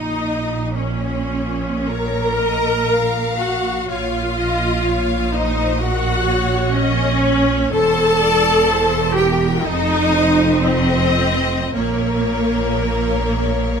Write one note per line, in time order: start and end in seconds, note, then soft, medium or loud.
0.00 3.85 A#1 medium
0.00 3.85 A#2 medium
0.00 0.73 D#4 medium
0.00 0.72 D#5 medium
0.76 1.89 C#4 medium
0.76 1.88 C#5 medium
1.88 3.39 A#4 loud
1.88 2.36 C#5 medium
1.88 3.40 A#5 medium
2.40 2.89 D#5 medium
2.89 3.89 F5 medium
3.39 3.88 F#4 medium
3.39 3.89 F#5 medium
3.88 7.71 A#1 medium
3.88 7.70 A#2 medium
3.88 5.34 F4 medium
3.88 4.37 C#5 medium
3.88 5.31 F5 medium
4.37 4.85 D#5 medium
4.85 5.33 C#5 medium
5.32 5.80 D#4 loud
5.32 5.78 C5 medium
5.32 5.80 D#5 medium
5.79 6.73 F#4 loud
5.79 6.26 A#4 medium
5.79 6.73 F#5 medium
6.24 6.72 C#5 medium
6.71 7.74 C#4 loud
6.71 7.74 C#5 medium
6.71 7.22 D#5 medium
7.21 7.73 C#5 medium
7.72 9.61 E1 medium
7.72 9.61 E2 medium
7.72 9.14 A4 loud
7.72 8.20 C5 medium
7.72 9.14 A5 loud
8.20 8.67 D5 medium
8.69 9.17 C5 medium
9.16 9.65 G4 loud
9.16 9.65 A#4 medium
9.16 9.65 G5 medium
9.65 11.75 F1 medium
9.65 11.75 F2 loud
9.65 10.64 D#4 loud
9.65 10.14 A4 medium
9.65 10.65 D#5 loud
10.14 10.65 C5 medium
10.64 11.74 C4 loud
10.64 11.74 C5 medium
10.64 11.75 D#5 loud
11.73 13.80 A#1 medium
11.73 13.80 A#2 medium
11.73 13.80 A#3 loud
11.73 13.80 A#4 medium
11.73 13.80 C#5 medium